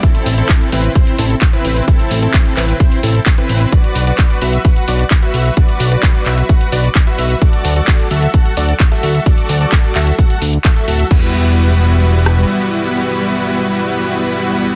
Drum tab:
CC |----------------|----------------|----------------|----------------|
HH |xxoxxxoxxxoxxxox|xxoxxxoxxxoxxxox|xxoxxxoxxxoxxxox|xxoxxxoxxxoxxxox|
CP |----x-------x---|----x-x-----x---|----x-------x---|----x-x-----x---|
SD |----------------|----------------|----------------|----------------|
BD |o---o---o---o---|o---o---o---o---|o---o---o---o---|o---o---o---o---|

CC |----------------|----------------|x---------------|----------------|
HH |xxoxxxoxxxoxxxox|xxoxxxoxxxoxxxox|----------------|----------------|
CP |----x-------x---|----x-x-----x---|----------------|----------------|
SD |----------------|----------------|----------r-----|----------------|
BD |o---o---o---o---|o---o---o---o---|o---------------|----------------|